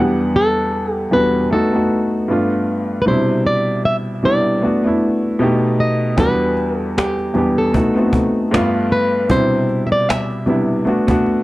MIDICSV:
0, 0, Header, 1, 4, 480
1, 0, Start_track
1, 0, Key_signature, 1, "minor"
1, 0, Tempo, 779221
1, 1888, Time_signature, 4, 2, 24, 8
1, 7043, End_track
2, 0, Start_track
2, 0, Title_t, "Nylon-string guitar"
2, 0, Program_c, 0, 24
2, 0, Note_on_c, 0, 67, 87
2, 222, Note_on_c, 0, 69, 94
2, 230, Note_off_c, 0, 67, 0
2, 579, Note_off_c, 0, 69, 0
2, 579, Note_on_c, 0, 67, 94
2, 696, Note_off_c, 0, 67, 0
2, 698, Note_on_c, 0, 71, 99
2, 938, Note_off_c, 0, 71, 0
2, 940, Note_on_c, 0, 69, 79
2, 1630, Note_off_c, 0, 69, 0
2, 1859, Note_on_c, 0, 71, 83
2, 1892, Note_off_c, 0, 71, 0
2, 1897, Note_on_c, 0, 72, 96
2, 2132, Note_off_c, 0, 72, 0
2, 2135, Note_on_c, 0, 74, 98
2, 2371, Note_off_c, 0, 74, 0
2, 2374, Note_on_c, 0, 76, 102
2, 2438, Note_off_c, 0, 76, 0
2, 2620, Note_on_c, 0, 74, 97
2, 3572, Note_off_c, 0, 74, 0
2, 3574, Note_on_c, 0, 75, 95
2, 3815, Note_off_c, 0, 75, 0
2, 3818, Note_on_c, 0, 71, 102
2, 4175, Note_off_c, 0, 71, 0
2, 4175, Note_on_c, 0, 69, 102
2, 4298, Note_on_c, 0, 67, 89
2, 4307, Note_off_c, 0, 69, 0
2, 4644, Note_off_c, 0, 67, 0
2, 4671, Note_on_c, 0, 69, 94
2, 5467, Note_off_c, 0, 69, 0
2, 5495, Note_on_c, 0, 71, 101
2, 5733, Note_off_c, 0, 71, 0
2, 5736, Note_on_c, 0, 72, 95
2, 6075, Note_off_c, 0, 72, 0
2, 6078, Note_on_c, 0, 76, 65
2, 6108, Note_off_c, 0, 76, 0
2, 6110, Note_on_c, 0, 74, 87
2, 6215, Note_off_c, 0, 74, 0
2, 6215, Note_on_c, 0, 76, 99
2, 7043, Note_off_c, 0, 76, 0
2, 7043, End_track
3, 0, Start_track
3, 0, Title_t, "Upright piano"
3, 0, Program_c, 1, 0
3, 0, Note_on_c, 1, 40, 78
3, 0, Note_on_c, 1, 59, 72
3, 0, Note_on_c, 1, 62, 71
3, 0, Note_on_c, 1, 78, 88
3, 8, Note_on_c, 1, 55, 71
3, 75, Control_c, 1, 64, 127
3, 633, Note_off_c, 1, 40, 0
3, 638, Note_off_c, 1, 59, 0
3, 641, Note_off_c, 1, 62, 0
3, 644, Note_off_c, 1, 78, 0
3, 655, Note_off_c, 1, 55, 0
3, 685, Note_on_c, 1, 40, 71
3, 691, Note_on_c, 1, 55, 71
3, 696, Note_on_c, 1, 59, 69
3, 701, Note_on_c, 1, 62, 65
3, 706, Note_on_c, 1, 66, 83
3, 923, Note_off_c, 1, 59, 0
3, 927, Note_off_c, 1, 40, 0
3, 927, Note_on_c, 1, 57, 77
3, 929, Note_off_c, 1, 55, 0
3, 933, Note_on_c, 1, 59, 67
3, 935, Note_off_c, 1, 62, 0
3, 935, Control_c, 1, 64, 0
3, 937, Note_off_c, 1, 66, 0
3, 940, Note_on_c, 1, 63, 70
3, 948, Note_on_c, 1, 66, 91
3, 1038, Control_c, 1, 64, 127
3, 1050, Note_off_c, 1, 57, 0
3, 1054, Note_off_c, 1, 59, 0
3, 1058, Note_off_c, 1, 63, 0
3, 1060, Note_on_c, 1, 57, 68
3, 1062, Note_off_c, 1, 66, 0
3, 1066, Note_on_c, 1, 59, 63
3, 1074, Note_on_c, 1, 63, 62
3, 1082, Note_on_c, 1, 66, 79
3, 1400, Note_off_c, 1, 57, 0
3, 1404, Note_on_c, 1, 43, 74
3, 1406, Note_off_c, 1, 59, 0
3, 1409, Note_on_c, 1, 57, 68
3, 1413, Note_off_c, 1, 63, 0
3, 1416, Note_on_c, 1, 59, 66
3, 1417, Note_off_c, 1, 66, 0
3, 1417, Control_c, 1, 64, 0
3, 1419, Note_on_c, 1, 62, 69
3, 1426, Note_on_c, 1, 65, 84
3, 1519, Control_c, 1, 64, 127
3, 1851, Note_off_c, 1, 43, 0
3, 1853, Note_off_c, 1, 57, 0
3, 1857, Note_off_c, 1, 59, 0
3, 1858, Note_off_c, 1, 62, 0
3, 1862, Note_off_c, 1, 65, 0
3, 1883, Note_on_c, 1, 48, 77
3, 1889, Note_on_c, 1, 55, 72
3, 1894, Note_on_c, 1, 47, 69
3, 1895, Control_c, 1, 64, 0
3, 1900, Note_on_c, 1, 62, 66
3, 1906, Note_on_c, 1, 64, 87
3, 1995, Control_c, 1, 64, 127
3, 2553, Note_off_c, 1, 48, 0
3, 2556, Note_off_c, 1, 55, 0
3, 2558, Note_off_c, 1, 47, 0
3, 2561, Note_off_c, 1, 62, 0
3, 2564, Note_off_c, 1, 64, 0
3, 2603, Note_on_c, 1, 48, 71
3, 2609, Note_on_c, 1, 55, 68
3, 2614, Note_on_c, 1, 59, 67
3, 2619, Note_on_c, 1, 62, 71
3, 2624, Note_on_c, 1, 64, 85
3, 2838, Note_off_c, 1, 59, 0
3, 2840, Note_on_c, 1, 57, 75
3, 2845, Note_off_c, 1, 62, 0
3, 2846, Note_off_c, 1, 48, 0
3, 2847, Note_on_c, 1, 59, 74
3, 2848, Note_off_c, 1, 55, 0
3, 2855, Note_on_c, 1, 62, 65
3, 2856, Note_off_c, 1, 64, 0
3, 2857, Control_c, 1, 64, 0
3, 2861, Note_on_c, 1, 66, 83
3, 2955, Control_c, 1, 64, 127
3, 2968, Note_off_c, 1, 57, 0
3, 2971, Note_off_c, 1, 59, 0
3, 2975, Note_off_c, 1, 62, 0
3, 2977, Note_on_c, 1, 57, 69
3, 2978, Note_off_c, 1, 66, 0
3, 2985, Note_on_c, 1, 59, 60
3, 2992, Note_on_c, 1, 62, 61
3, 3000, Note_on_c, 1, 64, 78
3, 3318, Note_off_c, 1, 57, 0
3, 3321, Note_on_c, 1, 47, 96
3, 3323, Note_off_c, 1, 59, 0
3, 3327, Note_on_c, 1, 57, 84
3, 3332, Note_off_c, 1, 62, 0
3, 3332, Note_on_c, 1, 59, 80
3, 3336, Note_off_c, 1, 64, 0
3, 3336, Control_c, 1, 64, 0
3, 3337, Note_on_c, 1, 63, 83
3, 3343, Note_on_c, 1, 67, 93
3, 3447, Control_c, 1, 64, 127
3, 3769, Note_off_c, 1, 47, 0
3, 3772, Note_off_c, 1, 57, 0
3, 3775, Note_off_c, 1, 59, 0
3, 3777, Note_off_c, 1, 63, 0
3, 3780, Note_off_c, 1, 67, 0
3, 3802, Note_on_c, 1, 40, 77
3, 3806, Note_on_c, 1, 55, 67
3, 3813, Note_on_c, 1, 59, 69
3, 3816, Control_c, 1, 64, 0
3, 3817, Note_on_c, 1, 62, 74
3, 3822, Note_on_c, 1, 66, 89
3, 3933, Control_c, 1, 64, 127
3, 4472, Note_off_c, 1, 40, 0
3, 4474, Note_off_c, 1, 55, 0
3, 4477, Note_off_c, 1, 59, 0
3, 4480, Note_off_c, 1, 62, 0
3, 4482, Note_off_c, 1, 66, 0
3, 4522, Note_on_c, 1, 40, 79
3, 4526, Note_on_c, 1, 55, 66
3, 4533, Note_on_c, 1, 59, 70
3, 4537, Note_on_c, 1, 62, 67
3, 4544, Note_on_c, 1, 67, 86
3, 4761, Note_off_c, 1, 59, 0
3, 4762, Note_on_c, 1, 57, 77
3, 4765, Note_off_c, 1, 40, 0
3, 4767, Note_off_c, 1, 55, 0
3, 4771, Note_on_c, 1, 59, 66
3, 4773, Note_off_c, 1, 62, 0
3, 4775, Control_c, 1, 64, 0
3, 4776, Note_off_c, 1, 67, 0
3, 4778, Note_on_c, 1, 63, 64
3, 4785, Note_on_c, 1, 66, 78
3, 4866, Control_c, 1, 64, 127
3, 4888, Note_off_c, 1, 57, 0
3, 4893, Note_off_c, 1, 59, 0
3, 4897, Note_off_c, 1, 63, 0
3, 4898, Note_on_c, 1, 57, 71
3, 4900, Note_off_c, 1, 66, 0
3, 4906, Note_on_c, 1, 59, 63
3, 4912, Note_on_c, 1, 60, 55
3, 4920, Note_on_c, 1, 66, 75
3, 4933, Note_off_c, 1, 60, 0
3, 4953, Note_on_c, 1, 63, 60
3, 5239, Note_off_c, 1, 57, 0
3, 5243, Note_on_c, 1, 43, 94
3, 5245, Note_off_c, 1, 59, 0
3, 5248, Note_on_c, 1, 57, 85
3, 5254, Note_on_c, 1, 59, 87
3, 5256, Note_off_c, 1, 66, 0
3, 5257, Control_c, 1, 64, 0
3, 5259, Note_on_c, 1, 62, 85
3, 5264, Note_on_c, 1, 65, 104
3, 5273, Note_off_c, 1, 63, 0
3, 5377, Control_c, 1, 64, 127
3, 5690, Note_off_c, 1, 43, 0
3, 5693, Note_off_c, 1, 57, 0
3, 5696, Note_off_c, 1, 59, 0
3, 5698, Note_off_c, 1, 62, 0
3, 5701, Note_off_c, 1, 65, 0
3, 5723, Note_on_c, 1, 48, 74
3, 5728, Note_on_c, 1, 55, 72
3, 5734, Note_on_c, 1, 47, 70
3, 5735, Control_c, 1, 64, 0
3, 5739, Note_on_c, 1, 62, 65
3, 5745, Note_on_c, 1, 64, 85
3, 5858, Control_c, 1, 64, 127
3, 6393, Note_off_c, 1, 48, 0
3, 6395, Note_off_c, 1, 55, 0
3, 6398, Note_off_c, 1, 47, 0
3, 6401, Note_off_c, 1, 62, 0
3, 6404, Note_off_c, 1, 64, 0
3, 6443, Note_on_c, 1, 48, 76
3, 6449, Note_on_c, 1, 55, 66
3, 6453, Note_on_c, 1, 59, 72
3, 6459, Note_on_c, 1, 62, 65
3, 6465, Note_on_c, 1, 64, 83
3, 6681, Note_off_c, 1, 59, 0
3, 6682, Note_on_c, 1, 57, 77
3, 6686, Note_off_c, 1, 48, 0
3, 6688, Note_off_c, 1, 55, 0
3, 6688, Note_off_c, 1, 62, 0
3, 6690, Note_on_c, 1, 59, 72
3, 6697, Note_off_c, 1, 64, 0
3, 6697, Control_c, 1, 64, 0
3, 6698, Note_on_c, 1, 62, 73
3, 6705, Note_on_c, 1, 66, 85
3, 6809, Note_off_c, 1, 57, 0
3, 6813, Note_off_c, 1, 59, 0
3, 6817, Note_off_c, 1, 62, 0
3, 6818, Control_c, 1, 64, 127
3, 6819, Note_on_c, 1, 57, 85
3, 6820, Note_off_c, 1, 66, 0
3, 6826, Note_on_c, 1, 59, 82
3, 6834, Note_on_c, 1, 62, 79
3, 6840, Note_on_c, 1, 66, 93
3, 7043, Note_off_c, 1, 57, 0
3, 7043, Note_off_c, 1, 59, 0
3, 7043, Note_off_c, 1, 62, 0
3, 7043, Note_off_c, 1, 66, 0
3, 7043, End_track
4, 0, Start_track
4, 0, Title_t, "Cajon"
4, 3805, Note_on_c, 9, 36, 104
4, 3867, Note_off_c, 9, 36, 0
4, 4047, Note_on_c, 9, 38, 31
4, 4109, Note_off_c, 9, 38, 0
4, 4300, Note_on_c, 9, 38, 110
4, 4302, Note_off_c, 9, 38, 0
4, 4302, Note_on_c, 9, 38, 96
4, 4364, Note_off_c, 9, 38, 0
4, 4426, Note_on_c, 9, 38, 28
4, 4487, Note_off_c, 9, 38, 0
4, 4525, Note_on_c, 9, 38, 34
4, 4586, Note_off_c, 9, 38, 0
4, 4770, Note_on_c, 9, 36, 91
4, 4831, Note_off_c, 9, 36, 0
4, 4910, Note_on_c, 9, 38, 29
4, 4972, Note_off_c, 9, 38, 0
4, 5007, Note_on_c, 9, 36, 91
4, 5068, Note_off_c, 9, 36, 0
4, 5261, Note_on_c, 9, 38, 109
4, 5264, Note_off_c, 9, 38, 0
4, 5264, Note_on_c, 9, 38, 87
4, 5325, Note_off_c, 9, 38, 0
4, 5493, Note_on_c, 9, 38, 41
4, 5555, Note_off_c, 9, 38, 0
4, 5727, Note_on_c, 9, 36, 102
4, 5788, Note_off_c, 9, 36, 0
4, 5970, Note_on_c, 9, 38, 32
4, 6032, Note_off_c, 9, 38, 0
4, 6222, Note_on_c, 9, 38, 114
4, 6224, Note_off_c, 9, 38, 0
4, 6224, Note_on_c, 9, 38, 91
4, 6286, Note_off_c, 9, 38, 0
4, 6349, Note_on_c, 9, 38, 26
4, 6411, Note_off_c, 9, 38, 0
4, 6448, Note_on_c, 9, 38, 35
4, 6510, Note_off_c, 9, 38, 0
4, 6696, Note_on_c, 9, 38, 48
4, 6758, Note_off_c, 9, 38, 0
4, 6826, Note_on_c, 9, 36, 94
4, 6888, Note_off_c, 9, 36, 0
4, 6938, Note_on_c, 9, 38, 34
4, 7000, Note_off_c, 9, 38, 0
4, 7043, End_track
0, 0, End_of_file